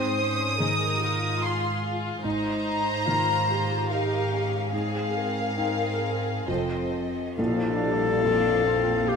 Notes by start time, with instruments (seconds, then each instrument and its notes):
Already playing: felt piano G#2, cello section G#2, violin section C4 C5 D#6, viola section C5
0.20 violin section C#4
0.60 felt piano D#3, violin section D#4 A#4, viola section G#4
1.01 viola section F4
1.41 violin section F4 G#4 C6
1.82 violin section F4
2.23 double bass section G#1, cello section G#2, felt piano G#2, violin section D#4 C5 A#5, viola section D#4
3.07 felt piano D#3, violin section F4, viola section F4
3.48 violin section F4, viola section G4
3.89 violin section D#4 A#4 F5
4.31 violin section C#4
4.72 felt piano G#2, violin section C4 G#4 F5, viola section G#4
5.16 viola section A#4
5.57 violin section C4 G#4, felt piano D#4 G5
6.47 double bass section F1, cello section F2, felt piano F2 F4 A4, violin section C4 A4 D#5, viola section C5
7.37 double bass section A#1, felt piano A#1, cello section A#2, viola section F3 D4, clarinet A4, violin section F5, tam-tam
7.82 viola section G3
8.23 felt piano F2, viola section F3 F4, violin section D4
8.65 violin section C4
9.06 violin section F4, viola section F4, clarinet G4